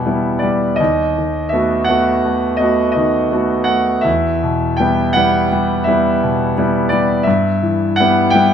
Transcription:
0.00 0.74 E2 soft
0.00 0.28 B2 soft
0.00 0.06 G3 soft
0.00 0.06 B3 soft
0.00 0.06 E4 soft
0.00 0.41 E5 medium
0.00 0.83 F#5 medium
0.00 0.83 G5 medium
0.06 0.40 G3 soft
0.06 0.40 B3 soft
0.06 0.40 E4 soft
0.39 0.81 G3 soft
0.39 0.79 D5 soft
0.76 4.02 D#2 soft
0.76 1.51 D#5 soft
1.18 1.76 D#3 soft
1.49 1.86 A3 soft
1.49 1.86 B3 soft
1.49 1.87 E5 medium
1.54 1.86 F#4 soft
1.84 2.59 F#5 medium
1.89 2.22 A3 soft
1.89 2.22 B3 soft
1.89 2.22 F#4 soft
2.25 2.58 A3 soft
2.57 2.93 A3 soft
2.57 2.93 B3 soft
2.57 2.90 D#5 medium
2.61 2.94 F#4 soft
2.92 3.55 D#3 soft
2.92 3.67 D#5 soft
3.32 3.65 A3 soft
3.32 3.66 B3 soft
3.32 3.66 F#4 soft
3.64 4.05 A3 soft
3.64 4.04 F#5 medium
4.01 7.22 E2 soft
4.01 4.76 E5 medium
4.43 5.01 B2 soft
4.77 5.12 G3 soft
4.77 5.12 B3 soft
4.77 5.13 E4 soft
4.77 5.14 G5 medium
5.13 5.48 G3 soft
5.13 5.49 B3 soft
5.13 5.49 E4 soft
5.13 5.86 F#5 medium
5.52 5.85 G3 soft
5.84 6.19 G3 soft
5.84 6.19 B3 soft
5.84 6.19 E4 soft
5.84 6.91 E5 medium
6.23 6.79 B2 soft
6.58 6.89 G3 soft
6.58 6.89 B3 soft
6.58 6.89 E4 soft
6.89 7.27 G3 soft
6.89 7.26 D5 medium
7.23 8.54 G2 soft
7.23 7.96 E5 medium
7.63 8.19 E3 soft
7.96 8.32 F#5 medium
8.00 8.30 G3 soft
8.00 8.31 B3 soft
8.00 8.30 E4 soft
8.30 8.54 G3 soft
8.30 8.54 G5 medium
8.35 8.54 B3 soft
8.35 8.54 E4 soft

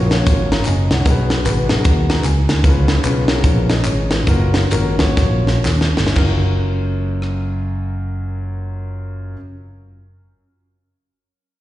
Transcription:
0.00 0.21 A#1 loud
0.11 0.65 A#3 medium
0.11 0.65 C#4 medium
0.11 0.65 F4 medium
0.11 0.66 F#4 medium
0.11 0.52 C#5 loud
0.11 snare loud
0.11 closed hi-hat medium
0.11 tambourine medium
0.26 0.60 G#1 medium
0.26 kick loud
0.26 closed hi-hat loud
0.26 tambourine medium
0.52 0.65 F5 medium
0.52 0.65 A#5 medium
0.52 snare loud
0.52 closed hi-hat medium
0.52 tambourine medium
0.65 0.87 F#1 loud
0.65 0.90 D#5 medium
0.65 0.90 G#5 medium
0.65 clap medium
0.65 closed hi-hat medium
0.65 tambourine loud
0.91 1.03 C2 medium
0.91 1.29 C#5 medium
0.91 1.29 F#5 medium
0.91 snare loud
0.91 closed hi-hat medium
0.91 tambourine medium
1.05 1.39 B1 loud
1.05 1.66 B2 medium
1.05 1.37 B3 medium
1.05 1.37 D#4 medium
1.05 1.37 F#4 medium
1.05 1.38 G#4 medium
1.05 1.12 A#4 medium
1.05 kick loud
1.05 closed hi-hat medium
1.05 tambourine medium
1.11 1.40 B4 loud
1.30 snare loud
1.30 closed hi-hat medium
1.30 tambourine medium
1.45 1.66 G#1 loud
1.45 1.63 B3 medium
1.45 1.64 D#4 medium
1.45 1.63 F#4 medium
1.45 1.63 G#4 medium
1.45 1.64 B4 loud
1.45 clap loud
1.45 closed hi-hat medium
1.45 tambourine loud
1.69 1.83 B1 medium
1.69 2.24 B3 loud
1.69 1.73 D4 medium
1.69 2.24 F#4 medium
1.69 2.24 G#4 medium
1.69 2.24 A#4 loud
1.69 snare loud
1.69 closed hi-hat medium
1.69 tambourine medium
1.75 2.26 D#4 medium
1.84 2.19 D#2 loud
1.84 kick loud
1.84 closed hi-hat loud
1.84 tambourine medium
2.09 2.23 A#5 medium
2.09 snare loud
2.09 closed hi-hat medium
2.09 tambourine medium
2.24 2.45 C#2 loud
2.24 2.48 G#5 medium
2.24 clap medium
2.24 closed hi-hat medium
2.24 tambourine medium
2.49 2.62 D2 loud
2.49 2.63 G#5 medium
2.49 snare loud
2.49 closed hi-hat medium
2.49 tambourine medium
2.63 2.98 C#2 loud
2.63 3.25 C#3 medium
2.63 2.96 B3 medium
2.63 2.96 C#4 medium
2.63 2.96 F4 medium
2.63 2.96 G#4 medium
2.63 2.70 A#4 medium
2.63 kick loud
2.63 closed hi-hat loud
2.63 tambourine medium
2.69 2.99 B4 loud
2.88 snare loud
2.88 closed hi-hat medium
2.88 tambourine medium
3.03 3.38 B1 medium
3.03 3.22 B3 medium
3.03 3.22 C#4 medium
3.03 3.23 F4 medium
3.03 3.23 G#4 medium
3.03 3.23 B4 loud
3.03 clap loud
3.03 closed hi-hat medium
3.03 tambourine loud
3.28 3.84 B3 medium
3.28 3.84 C#4 medium
3.28 3.70 F4 medium
3.28 3.70 G#4 medium
3.28 3.69 A#4 loud
3.28 snare loud
3.28 closed hi-hat medium
3.28 tambourine medium
3.44 3.79 A#1 loud
3.44 kick loud
3.44 closed hi-hat loud
3.44 tambourine medium
3.69 3.85 A#4 medium
3.69 3.85 D#5 medium
3.69 snare loud
3.69 closed hi-hat medium
3.69 tambourine medium
3.84 4.22 G#1 loud
3.84 4.11 G#4 medium
3.84 4.11 C#5 medium
3.84 clap loud
3.84 closed hi-hat medium
3.84 tambourine medium
4.11 4.27 F4 medium
4.11 4.53 B4 medium
4.11 snare loud
4.11 closed hi-hat medium
4.11 tambourine medium
4.27 4.65 F#1 loud
4.27 4.63 A#3 medium
4.27 4.63 C#4 medium
4.27 4.64 F4 medium
4.27 4.64 F#4 medium
4.27 4.64 A#4 loud
4.27 kick loud
4.27 closed hi-hat medium
4.27 tambourine medium
4.54 snare loud
4.54 closed hi-hat medium
4.54 tambourine medium
4.71 5.11 G#1 medium
4.71 4.93 A#3 medium
4.71 4.93 C#4 medium
4.71 4.93 F4 medium
4.71 4.93 F#4 medium
4.71 4.94 A#4 loud
4.71 clap loud
4.71 closed hi-hat medium
4.71 tambourine loud
4.99 5.65 A#3 medium
4.99 5.65 C#4 medium
4.99 5.65 F4 medium
4.99 5.65 F#4 medium
4.99 5.65 C#5 loud
4.99 kick medium
4.99 snare loud
4.99 closed hi-hat medium
4.99 tambourine medium
5.17 5.59 A#1 loud
5.17 kick loud
5.17 snare medium
5.17 tambourine medium
5.47 snare medium
5.47 tambourine medium
5.65 5.93 D#2 medium
5.65 snare medium
5.65 clap medium
5.65 tambourine medium
5.81 snare medium
5.97 6.15 G1 medium
5.97 snare loud
5.97 tambourine medium
6.07 snare loud
6.14 9.35 F#1 loud
6.14 9.35 F#2 medium
6.14 9.32 C#4 medium
6.14 9.33 F4 medium
6.14 9.35 F#4 medium
6.14 kick loud
6.14 clap medium
6.14 crash medium
6.18 9.37 A#4 medium
7.22 cross-stick medium

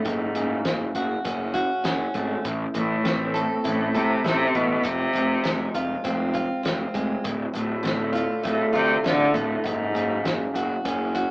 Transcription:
0.00 2.14 A3 medium
0.05 0.24 F#1 medium
0.05 1.55 F#2 medium
0.05 0.96 G#2 medium
0.05 kick loud
0.05 closed hi-hat medium
0.35 0.55 F#1 medium
0.35 1.85 C#3 medium
0.35 closed hi-hat medium
0.65 0.84 F#1 medium
0.65 snare loud
0.65 closed hi-hat medium
0.95 1.14 F#1 medium
0.95 1.52 F#4 medium
0.95 closed hi-hat medium
1.25 1.64 F#1 medium
1.25 1.83 C#4 medium
1.25 kick medium
1.25 closed hi-hat medium
1.54 2.44 F#4 medium
1.54 kick medium
1.54 closed hi-hat medium
1.84 2.04 F#1 medium
1.84 2.45 C#4 medium
1.84 snare loud
1.84 closed hi-hat medium
2.14 2.34 G#1 medium
2.14 2.45 A3 medium
2.14 kick medium
2.14 closed hi-hat medium
2.45 2.64 A1 medium
2.45 3.95 A2 medium
2.45 kick loud
2.45 closed hi-hat medium
2.74 2.94 A1 medium
2.74 3.61 A2 medium
2.74 4.25 E3 medium
2.74 closed hi-hat medium
3.04 3.43 A1 medium
3.04 4.55 C4 medium
3.04 snare loud
3.04 closed hi-hat medium
3.34 3.93 A4 medium
3.34 closed hi-hat medium
3.64 3.85 A1 medium
3.64 3.98 A2 medium
3.64 4.23 E4 medium
3.64 kick medium
3.64 closed hi-hat medium
3.94 4.15 A2 medium
3.94 4.25 C3 medium
3.94 4.85 A4 medium
3.94 kick medium
3.94 closed hi-hat medium
4.24 4.44 A1 medium
4.24 4.57 C3 loud
4.24 4.85 E4 medium
4.24 snare medium
4.24 closed hi-hat medium
4.55 4.74 A1 medium
4.55 4.88 B2 medium
4.55 kick medium
4.55 closed hi-hat medium
4.83 5.04 F1 medium
4.83 6.34 F2 medium
4.83 5.76 C3 medium
4.83 kick loud
4.83 closed hi-hat medium
5.13 5.34 F1 medium
5.13 6.64 C3 medium
5.13 closed hi-hat medium
5.44 5.65 F1 medium
5.44 6.93 G#3 medium
5.44 snare loud
5.44 closed hi-hat medium
5.74 5.94 F1 medium
5.74 6.32 F4 medium
5.74 closed hi-hat medium
6.04 6.43 F1 medium
6.04 6.62 C4 medium
6.04 kick medium
6.04 closed hi-hat medium
6.33 7.24 F4 medium
6.33 kick medium
6.33 closed hi-hat medium
6.63 6.84 F1 medium
6.63 7.24 C4 medium
6.63 snare medium
6.63 closed hi-hat medium
6.94 7.14 F1 medium
6.94 7.25 G#3 medium
6.94 kick medium
6.94 closed hi-hat medium
7.24 7.44 D1 medium
7.24 8.75 D2 medium
7.24 kick loud
7.24 closed hi-hat medium
7.54 7.74 D1 medium
7.54 9.04 A2 medium
7.54 8.41 A2 medium
7.54 closed hi-hat medium
7.83 8.23 D1 medium
7.83 9.33 D3 medium
7.83 snare loud
7.83 closed hi-hat medium
8.13 8.72 F4 medium
8.13 closed hi-hat soft
8.43 8.64 D1 medium
8.43 8.73 A2 medium
8.43 9.04 A3 medium
8.43 kick loud
8.43 closed hi-hat medium
8.73 8.94 D2 medium
8.73 9.03 C3 medium
8.73 9.64 F4 medium
8.73 kick medium
8.73 closed hi-hat medium
9.04 9.24 D1 medium
9.04 9.35 D3 loud
9.04 11.31 A3 medium
9.04 snare loud
9.04 closed hi-hat medium
9.34 9.54 D1 medium
9.34 9.65 A2 medium
9.34 9.65 D3 medium
9.34 kick medium
9.34 closed hi-hat medium
9.64 9.84 F#1 medium
9.64 11.14 F#2 medium
9.64 10.54 G#2 medium
9.64 kick medium
9.64 closed hi-hat medium
9.94 10.13 F#1 medium
9.94 11.31 C#3 medium
9.94 closed hi-hat medium
10.24 10.43 F#1 medium
10.24 snare loud
10.24 closed hi-hat medium
10.53 10.73 F#1 medium
10.53 11.13 F#4 medium
10.53 closed hi-hat medium
10.85 11.23 F#1 medium
10.85 11.31 C#4 medium
10.85 kick loud
10.85 closed hi-hat medium
11.15 11.31 F#4 medium
11.15 kick medium
11.15 closed hi-hat medium

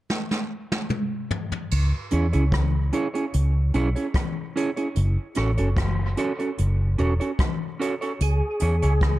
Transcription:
0.10 snare medium
0.31 snare soft
0.72 snare medium
0.90 mid tom medium
1.31 floor tom medium
1.52 floor tom medium
1.71 1.91 C#2 loud
1.71 crash medium
2.11 2.32 E2 medium
2.11 2.25 C#4 medium
2.11 2.26 E4 medium
2.11 2.26 G#4 medium
2.11 2.26 C#5 medium
2.11 closed hi-hat medium
2.33 2.90 C#2 medium
2.33 2.44 C#4 medium
2.33 2.44 E4 medium
2.33 2.43 G#4 medium
2.33 2.43 C#5 medium
2.33 closed hi-hat soft
2.52 kick loud
2.52 cross-stick loud
2.52 closed hi-hat medium
2.93 3.06 C#4 medium
2.93 3.07 E4 medium
2.93 3.07 G#4 medium
2.93 3.07 C#5 medium
2.93 closed hi-hat medium
3.14 3.25 C#4 medium
3.14 3.25 E4 medium
3.14 3.25 G#4 medium
3.14 3.24 C#5 medium
3.14 closed hi-hat soft
3.34 3.71 C#2 loud
3.34 closed hi-hat medium
3.74 3.94 B1 medium
3.74 3.88 C#4 medium
3.74 3.88 E4 medium
3.74 3.88 G#4 medium
3.74 3.89 C#5 medium
3.74 closed hi-hat medium
3.96 4.07 C#4 soft
3.96 4.06 E4 soft
3.96 4.06 G#4 soft
3.96 4.06 C#5 medium
3.96 closed hi-hat soft
4.14 kick loud
4.14 cross-stick loud
4.14 closed hi-hat medium
4.56 4.69 C#4 medium
4.56 4.69 E4 medium
4.56 4.70 G#4 medium
4.56 4.70 C#5 medium
4.56 closed hi-hat medium
4.76 4.87 C#4 soft
4.76 4.87 E4 soft
4.76 4.87 G#4 medium
4.76 4.87 C#5 medium
4.76 closed hi-hat soft
4.96 5.16 F#1 medium
4.96 closed hi-hat medium
5.35 5.57 A1 medium
5.35 5.50 C#4 medium
5.35 5.50 F#4 medium
5.35 5.50 A4 medium
5.35 5.51 C#5 medium
5.35 cross-stick medium
5.35 closed hi-hat medium
5.57 6.14 F#1 medium
5.57 5.69 C#4 medium
5.57 5.68 F#4 medium
5.57 5.68 A4 medium
5.57 5.68 C#5 medium
5.57 closed hi-hat soft
5.77 kick loud
5.77 cross-stick loud
5.77 closed hi-hat medium
6.17 6.31 C#4 medium
6.17 6.31 F#4 medium
6.17 6.32 A4 loud
6.17 6.32 C#5 medium
6.17 closed hi-hat medium
6.39 6.50 C#4 medium
6.39 6.50 F#4 medium
6.39 6.49 A4 medium
6.39 6.49 C#5 medium
6.39 closed hi-hat soft
6.58 6.96 F#1 loud
6.58 closed hi-hat medium
6.98 7.19 E1 medium
6.98 7.12 C#4 medium
6.98 7.12 F#4 medium
6.98 7.13 A4 medium
6.98 7.13 C#5 medium
6.98 closed hi-hat soft
7.20 7.31 C#4 soft
7.20 7.31 F#4 medium
7.20 7.30 A4 medium
7.20 7.30 C#5 medium
7.20 closed hi-hat soft
7.39 kick loud
7.39 cross-stick loud
7.39 closed hi-hat medium
7.79 7.93 C#4 medium
7.79 7.94 F#4 medium
7.79 7.94 A4 medium
7.79 7.94 C#5 medium
7.79 closed hi-hat medium
8.01 8.12 C#4 medium
8.01 8.12 F#4 medium
8.01 8.12 A4 medium
8.01 8.11 C#5 medium
8.01 closed hi-hat soft
8.21 8.40 C#2 loud
8.21 9.19 G#4 loud
8.21 closed hi-hat loud
8.60 8.81 E2 medium
8.60 8.74 C#4 medium
8.60 8.75 E4 medium
8.60 8.75 G#4 medium
8.60 8.75 C#5 medium
8.60 closed hi-hat medium
8.82 9.19 C#2 medium
8.82 8.93 C#4 medium
8.82 8.93 E4 medium
8.82 8.93 G#4 medium
8.82 8.93 C#5 medium
8.82 closed hi-hat medium
9.01 kick loud
9.01 cross-stick loud
9.01 closed hi-hat medium

